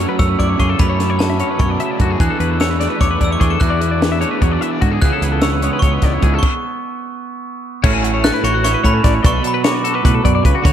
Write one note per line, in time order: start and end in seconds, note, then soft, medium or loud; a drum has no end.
0.00 0.78 F#2 medium
0.00 0.19 F#3 medium
0.00 1.39 F#3 medium
0.00 0.20 A3 medium
0.00 0.19 C#4 medium
0.00 0.57 C#4 soft
0.00 0.38 E4 soft
0.00 0.21 F#4 medium
0.00 0.80 A4 medium
0.00 0.20 C#6 medium
0.09 0.19 B4 medium
0.19 0.35 F#2 medium
0.19 0.59 F#3 medium
0.19 0.60 A3 medium
0.19 0.59 C#4 medium
0.19 0.61 F#4 medium
0.19 0.29 C#5 medium
0.19 0.28 E6 medium
0.19 kick medium
0.19 closed hi-hat medium
0.29 0.38 B4 medium
0.39 0.55 F#2 medium
0.39 0.80 E4 medium
0.39 0.49 D5 medium
0.39 0.60 D6 medium
0.39 kick soft
0.39 closed hi-hat soft
0.49 0.59 C#5 medium
0.57 0.75 F#2 medium
0.57 0.79 C#3 medium
0.57 0.77 F#3 medium
0.57 0.78 A3 medium
0.57 0.77 C#4 medium
0.57 0.78 C#4 medium
0.57 0.69 G#4 medium
0.57 0.69 C#6 medium
0.57 kick medium
0.57 closed hi-hat medium
0.61 0.80 F#4 medium
0.69 0.79 A4 medium
0.78 1.58 F#2 medium
0.78 1.41 F#2 medium
0.78 1.18 F#3 medium
0.78 1.01 A3 medium
0.78 0.99 C#4 medium
0.78 1.39 C#4 medium
0.78 2.21 E4 soft
0.78 0.98 F#4 medium
0.78 2.21 A4 medium
0.78 0.89 B4 medium
0.78 1.21 B5 medium
0.78 kick loud
0.78 closed hi-hat medium
0.90 0.99 C#5 medium
0.99 1.19 A3 soft
0.99 1.20 C#4 medium
0.99 1.21 F#4 medium
0.99 1.10 A4 medium
0.99 snare soft
0.99 closed hi-hat medium
1.10 1.20 C#5 medium
1.19 1.58 F#3 medium
1.19 1.40 A3 medium
1.19 1.38 C#4 medium
1.19 1.38 F#4 medium
1.19 1.29 A4 medium
1.19 1.61 A5 medium
1.19 snare medium
1.19 closed hi-hat medium
1.30 1.40 E5 medium
1.38 2.79 F#3 medium
1.38 1.59 A3 medium
1.38 1.59 C#4 medium
1.38 2.18 C#4 medium
1.38 1.61 F#4 medium
1.38 1.50 C#5 medium
1.38 closed hi-hat medium
1.51 1.61 B4 soft
1.58 1.75 F#2 medium
1.58 1.79 B2 medium
1.58 1.98 F#3 medium
1.58 1.99 A3 medium
1.58 1.99 C#4 medium
1.58 2.01 F#4 medium
1.58 1.70 C#5 medium
1.58 2.02 C#6 medium
1.58 kick loud
1.58 closed hi-hat medium
1.70 1.80 D5 medium
1.79 1.99 C#3 medium
1.79 1.91 E5 medium
1.79 closed hi-hat medium
1.91 2.01 D5 medium
1.98 2.15 F#2 medium
1.98 2.19 D3 medium
1.98 2.19 F#3 medium
1.98 2.20 A3 medium
1.98 2.19 C#4 medium
1.98 2.21 F#4 medium
1.98 2.11 F#4 medium
1.98 kick medium
1.98 closed hi-hat medium
2.11 2.19 G#4 medium
2.19 2.28 E2 medium
2.19 2.58 E3 medium
2.19 3.39 E3 medium
2.19 2.41 B3 medium
2.19 2.80 D4 medium
2.19 2.40 D4 medium
2.19 3.20 E4 soft
2.19 3.61 F#4 medium
2.19 2.30 G#4 medium
2.19 2.37 G#4 medium
2.19 2.62 F#6 medium
2.19 kick loud
2.19 closed hi-hat medium
2.30 2.40 A4 medium
2.39 2.86 E2 medium
2.39 2.59 B3 soft
2.39 2.59 D4 medium
2.39 2.59 G#4 medium
2.39 2.50 B4 medium
2.39 closed hi-hat medium
2.50 2.60 A4 medium
2.58 2.98 E3 medium
2.58 2.81 B3 medium
2.58 2.79 D4 medium
2.58 2.77 G#4 medium
2.58 2.71 C#5 medium
2.58 3.02 E6 medium
2.58 snare medium
2.58 closed hi-hat medium
2.71 2.80 B4 medium
2.79 3.58 A3 medium
2.79 2.99 B3 medium
2.79 2.99 D4 medium
2.79 3.39 D4 medium
2.79 3.00 G#4 medium
2.79 2.90 D5 medium
2.79 snare soft
2.79 closed hi-hat medium
2.90 3.00 B4 medium
2.98 3.16 E2 medium
2.98 3.38 E3 medium
2.98 3.39 B3 medium
2.98 3.39 D4 medium
2.98 3.40 G#4 medium
2.98 3.10 C#5 medium
2.98 3.25 D6 medium
2.98 kick medium
2.98 closed hi-hat medium
3.11 3.21 B4 medium
3.21 3.36 E2 medium
3.21 3.61 E4 soft
3.21 3.31 D5 medium
3.21 3.34 E6 medium
3.21 kick medium
3.21 closed hi-hat medium
3.31 3.41 C#5 medium
3.31 3.42 D6 medium
3.39 3.56 E2 medium
3.39 3.59 E3 medium
3.39 3.59 B3 medium
3.39 3.60 D4 medium
3.39 3.58 D4 soft
3.39 3.51 G#4 medium
3.39 3.61 G#4 medium
3.39 3.51 C#6 medium
3.39 kick medium
3.39 closed hi-hat medium
3.50 3.60 A4 medium
3.50 3.60 D6 medium
3.59 4.23 E2 medium
3.59 4.00 E3 medium
3.59 4.61 E3 medium
3.59 3.82 B3 medium
3.59 4.21 D4 medium
3.59 3.80 D4 medium
3.59 5.04 E4 medium
3.59 5.02 F#4 medium
3.59 3.78 G#4 medium
3.59 3.70 B4 medium
3.59 4.03 F#6 medium
3.59 kick loud
3.59 closed hi-hat medium
3.70 3.81 D5 medium
3.79 4.01 B3 medium
3.79 4.01 D4 soft
3.79 4.02 G#4 medium
3.79 3.91 B4 medium
3.79 closed hi-hat medium
3.91 4.02 D5 medium
4.00 4.40 E3 medium
4.00 4.22 B3 medium
4.00 4.21 D4 medium
4.00 4.19 G#4 medium
4.00 4.11 B4 medium
4.00 snare medium
4.00 closed hi-hat medium
4.12 4.20 E5 medium
4.20 4.40 A3 medium
4.20 4.41 B3 medium
4.20 5.00 D4 medium
4.20 4.41 D4 medium
4.20 4.42 G#4 medium
4.20 4.31 C#5 medium
4.20 closed hi-hat medium
4.31 4.42 B4 medium
4.40 4.57 E2 medium
4.40 4.81 E3 medium
4.40 4.61 F#3 medium
4.40 4.82 B3 medium
4.40 4.82 D4 medium
4.40 4.83 G#4 loud
4.40 4.52 C#5 medium
4.40 kick medium
4.40 closed hi-hat medium
4.52 4.61 D5 medium
4.61 4.81 E3 medium
4.61 4.71 E5 medium
4.61 closed hi-hat medium
4.71 4.82 D5 medium
4.81 4.97 G#2 medium
4.81 5.02 D3 medium
4.81 5.00 E3 medium
4.81 5.01 B3 medium
4.81 5.02 D4 medium
4.81 4.91 F#4 medium
4.81 5.02 G#4 medium
4.81 kick medium
4.81 closed hi-hat medium
4.91 5.00 G#4 medium
5.00 5.10 C#2 medium
5.00 5.41 C#3 medium
5.00 6.23 C#3 medium
5.00 5.41 E3 medium
5.00 5.22 G#3 medium
5.00 5.20 C#4 medium
5.00 5.12 G#4 medium
5.00 5.19 G#4 medium
5.00 5.43 F#6 loud
5.00 kick loud
5.00 closed hi-hat medium
5.04 5.63 B3 medium
5.04 6.02 E4 medium
5.04 6.42 G#4 medium
5.13 5.23 A4 medium
5.20 5.68 C#2 medium
5.20 5.42 G#3 medium
5.20 5.43 C#4 medium
5.20 5.43 G#4 medium
5.20 5.32 B4 medium
5.20 closed hi-hat medium
5.32 5.42 A4 medium
5.42 5.80 E3 medium
5.42 5.63 G#3 medium
5.42 5.62 C#4 medium
5.42 5.60 G#4 medium
5.42 5.52 C#5 medium
5.42 5.83 E6 medium
5.42 snare medium
5.42 closed hi-hat medium
5.53 5.63 B4 medium
5.61 6.41 G#3 medium
5.61 5.81 G#3 medium
5.61 6.22 B3 medium
5.61 5.82 C#4 medium
5.61 5.82 G#4 medium
5.61 5.73 C#5 medium
5.61 closed hi-hat medium
5.73 5.83 B4 medium
5.79 5.98 C#2 medium
5.79 6.41 C#3 medium
5.79 6.21 E3 medium
5.79 6.22 G#3 medium
5.79 6.23 C#4 medium
5.79 6.23 G#4 medium
5.79 5.94 C#5 medium
5.79 6.37 C#6 medium
5.79 kick loud
5.79 closed hi-hat medium
5.94 6.03 B4 medium
6.02 6.18 C#2 medium
6.02 6.41 E4 medium
6.02 6.13 D5 medium
6.02 kick medium
6.02 snare soft
6.02 closed hi-hat medium
6.13 6.23 C#5 medium
6.22 6.38 C#2 medium
6.22 6.40 G#2 medium
6.22 6.41 E3 medium
6.22 6.42 G#3 medium
6.22 7.84 B3 soft
6.22 6.42 C#4 medium
6.22 6.34 G#4 medium
6.22 6.43 G#4 medium
6.22 kick medium
6.22 closed hi-hat medium
6.34 6.43 A4 medium
6.39 7.37 C#6 medium
6.39 crash medium
6.43 kick medium
7.84 8.30 A1 medium
7.84 9.22 A2 medium
7.84 8.03 A3 medium
7.84 8.22 C#4 medium
7.84 8.23 E4 medium
7.84 8.44 F#4 medium
7.84 7.94 C#5 medium
7.84 kick loud
7.84 crash loud
7.94 8.04 G#5 medium
8.03 9.04 A3 medium
8.03 8.13 F#5 medium
8.03 closed hi-hat medium
8.14 8.24 C#5 medium
8.24 8.32 C#4 medium
8.24 8.33 A4 medium
8.24 8.44 F#6 loud
8.24 snare loud
8.24 closed hi-hat medium
8.32 8.63 E4 medium
8.32 8.44 B4 medium
8.43 8.74 A1 medium
8.43 9.24 F#4 medium
8.43 8.54 C#5 medium
8.43 8.63 C#6 medium
8.43 closed hi-hat medium
8.54 8.64 F#4 medium
8.64 9.22 E4 medium
8.64 8.74 C#5 medium
8.64 8.85 C#6 medium
8.64 snare soft
8.64 closed hi-hat loud
8.74 8.83 B4 medium
8.83 8.99 A2 medium
8.83 9.22 C#4 medium
8.83 8.94 C#5 medium
8.83 9.26 B5 medium
8.83 kick medium
8.83 closed hi-hat medium
8.94 9.04 A4 medium
9.04 9.19 A1 medium
9.04 9.27 A3 medium
9.04 9.15 D5 medium
9.04 kick medium
9.04 snare soft
9.04 closed hi-hat medium
9.15 9.23 C#5 medium
9.23 9.40 B1 loud
9.23 10.03 B2 medium
9.23 9.83 A4 medium
9.23 9.33 D5 medium
9.23 9.46 C#6 loud
9.23 kick loud
9.23 closed hi-hat loud
9.33 9.44 B4 medium
9.44 10.73 F#3 medium
9.44 9.54 A4 medium
9.44 9.66 B5 medium
9.44 closed hi-hat medium
9.54 9.64 B4 medium
9.64 9.84 F#4 medium
9.64 9.74 C#5 medium
9.64 10.21 D6 medium
9.64 snare loud
9.64 closed hi-hat medium
9.74 9.84 D5 medium
9.84 9.94 F#4 medium
9.84 9.94 A4 medium
9.84 closed hi-hat medium
9.94 10.63 A4 medium
9.94 10.04 B4 medium
10.03 10.23 A2 medium
10.03 10.20 B2 medium
10.03 10.15 B4 medium
10.03 kick loud
10.03 closed hi-hat loud
10.15 10.24 A4 medium
10.23 10.40 F#2 medium
10.23 10.44 B2 medium
10.23 10.34 D5 medium
10.23 kick medium
10.23 closed hi-hat medium
10.35 10.45 D5 medium
10.43 10.52 C#2 medium
10.43 10.62 C#3 medium
10.43 10.55 B4 medium
10.43 kick medium
10.43 closed hi-hat medium
10.55 10.65 F#4 medium
10.63 10.73 D2 loud
10.63 10.73 D3 medium
10.63 10.73 F#4 medium
10.63 10.73 C#5 medium
10.63 kick loud
10.63 closed hi-hat loud